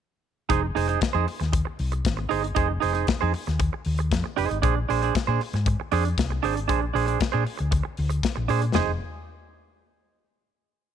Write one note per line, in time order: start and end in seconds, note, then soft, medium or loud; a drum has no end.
0.49 0.71 F1 loud
0.49 0.65 D#4 medium
0.49 0.63 G#4 loud
0.49 0.61 C5 medium
0.49 kick loud
0.49 closed hi-hat medium
0.62 muted clean electric guitar stroke soft
0.75 0.96 F1 medium
0.75 0.87 D#4 medium
0.75 0.88 G#4 medium
0.75 0.87 C5 medium
0.75 open hi-hat medium
0.88 1.00 D#4 soft
0.88 1.01 G#4 soft
0.88 1.00 C5 medium
0.88 closed hi-hat soft
1.01 muted fingered electric bass stroke soft
1.01 kick loud
1.01 snare loud
1.01 closed hi-hat soft
1.13 1.25 F2 medium
1.13 1.26 D#4 medium
1.13 1.26 G#4 medium
1.13 1.27 C5 medium
1.27 muted clean electric guitar stroke soft
1.27 open hi-hat medium
1.40 1.61 D#2 medium
1.40 muted clean electric guitar stroke soft
1.40 snare soft
1.40 closed hi-hat soft
1.53 muted clean electric guitar stroke soft
1.53 kick loud
1.53 closed hi-hat medium
1.65 muted clean electric guitar stroke soft
1.79 2.00 C2 medium
1.79 open hi-hat medium
1.92 muted clean electric guitar stroke soft
1.92 closed hi-hat soft
2.05 2.25 G#1 loud
2.05 kick loud
2.05 snare loud
2.05 closed hi-hat medium
2.17 muted clean electric guitar stroke soft
2.29 2.51 G1 medium
2.29 2.45 D#4 medium
2.29 2.43 G#4 medium
2.29 2.42 C5 medium
2.29 open hi-hat medium
2.43 muted clean electric guitar stroke medium
2.43 closed hi-hat soft
2.55 2.77 F1 medium
2.55 2.71 D#4 medium
2.55 2.69 G#4 medium
2.55 2.67 C5 medium
2.55 kick loud
2.55 closed hi-hat medium
2.68 muted clean electric guitar stroke medium
2.80 3.03 F1 medium
2.80 2.93 D#4 medium
2.80 2.93 G#4 medium
2.80 2.92 C5 medium
2.80 open hi-hat medium
2.93 3.06 D#4 soft
2.93 3.07 G#4 medium
2.93 3.06 C5 medium
2.93 closed hi-hat soft
3.07 muted clean electric guitar stroke soft
3.07 muted fingered electric bass stroke soft
3.07 kick loud
3.07 snare loud
3.07 closed hi-hat soft
3.21 3.32 F2 medium
3.21 3.32 D#4 medium
3.21 3.33 G#4 medium
3.21 3.33 C5 medium
3.33 muted clean electric guitar stroke soft
3.33 open hi-hat medium
3.46 3.68 D#2 medium
3.46 muted clean electric guitar stroke soft
3.46 snare soft
3.46 closed hi-hat soft
3.59 muted clean electric guitar stroke soft
3.59 kick loud
3.59 closed hi-hat medium
3.73 muted clean electric guitar stroke soft
3.85 4.12 D#2 medium
3.85 open hi-hat medium
3.98 muted clean electric guitar stroke soft
3.98 closed hi-hat soft
4.11 4.22 F2 loud
4.11 kick loud
4.11 snare medium
4.11 closed hi-hat medium
4.24 muted clean electric guitar stroke soft
4.36 4.48 F1 medium
4.36 4.57 D#4 medium
4.36 4.50 G#4 medium
4.36 4.49 C5 medium
4.36 open hi-hat medium
4.50 4.61 G#1 medium
4.50 muted clean electric guitar stroke soft
4.50 closed hi-hat soft
4.62 4.84 A#1 loud
4.62 4.78 D4 medium
4.62 4.76 G#4 medium
4.62 4.74 C5 medium
4.62 kick loud
4.62 closed hi-hat medium
4.76 muted clean electric guitar stroke soft
4.89 5.10 A#1 medium
4.89 5.01 D4 medium
4.89 5.01 G#4 medium
4.89 5.01 C5 medium
4.89 open hi-hat medium
5.02 5.14 D4 soft
5.02 5.14 G#4 medium
5.02 5.14 C5 medium
5.02 closed hi-hat soft
5.15 muted clean electric guitar stroke soft
5.15 muted fingered electric bass stroke soft
5.15 kick loud
5.15 snare loud
5.15 closed hi-hat medium
5.27 5.38 A#2 loud
5.27 5.40 D4 medium
5.27 5.41 G#4 medium
5.27 5.42 C5 medium
5.41 muted clean electric guitar stroke soft
5.41 open hi-hat medium
5.53 5.74 G#2 medium
5.53 muted clean electric guitar stroke soft
5.53 snare soft
5.53 closed hi-hat soft
5.66 muted clean electric guitar stroke soft
5.66 kick loud
5.66 closed hi-hat medium
5.80 muted clean electric guitar stroke soft
5.92 6.12 F2 loud
5.92 6.07 D4 medium
5.92 6.05 G#4 medium
5.92 6.04 C5 medium
5.92 open hi-hat medium
6.05 muted clean electric guitar stroke soft
6.05 closed hi-hat soft
6.18 6.38 C2 loud
6.18 kick medium
6.18 snare medium
6.18 closed hi-hat medium
6.30 muted clean electric guitar stroke soft
6.43 6.69 G#1 medium
6.43 6.58 D4 medium
6.43 6.56 G#4 medium
6.43 6.54 C5 medium
6.43 open hi-hat medium
6.56 muted clean electric guitar stroke medium
6.56 closed hi-hat soft
6.68 6.90 A#1 loud
6.68 6.84 D4 medium
6.68 6.81 G#4 medium
6.68 6.80 C5 medium
6.68 kick loud
6.68 closed hi-hat medium
6.81 muted clean electric guitar stroke soft
6.94 7.15 A#1 medium
6.94 7.06 D4 medium
6.94 7.06 G#4 medium
6.94 7.05 C5 medium
6.94 open hi-hat medium
7.06 7.18 D4 soft
7.06 7.20 G#4 soft
7.06 7.19 C5 medium
7.06 closed hi-hat soft
7.20 muted clean electric guitar stroke soft
7.20 muted fingered electric bass stroke soft
7.20 kick loud
7.20 snare loud
7.20 closed hi-hat medium
7.32 7.44 A#2 loud
7.32 7.44 D4 medium
7.32 7.44 G#4 medium
7.32 7.45 C5 medium
7.47 open hi-hat medium
7.58 7.80 D2 medium
7.58 muted clean electric guitar stroke soft
7.58 closed hi-hat soft
7.71 muted clean electric guitar stroke soft
7.71 kick loud
7.71 closed hi-hat medium
7.83 muted clean electric guitar stroke soft
7.97 8.19 D2 medium
7.97 open hi-hat medium
8.10 muted clean electric guitar stroke soft
8.10 closed hi-hat soft
8.23 kick loud
8.23 snare loud
8.23 closed hi-hat medium
8.36 8.47 A#1 medium
8.36 muted clean electric guitar stroke soft
8.48 8.70 A#2 medium
8.48 8.64 D4 medium
8.48 8.62 G#4 medium
8.48 8.61 C5 medium
8.48 open hi-hat medium
8.62 muted clean electric guitar stroke soft
8.62 closed hi-hat soft
8.74 8.99 F1 loud
8.74 8.90 D#4 medium
8.74 8.90 G#4 medium
8.74 8.91 C5 medium
8.74 snare loud
8.74 floor tom loud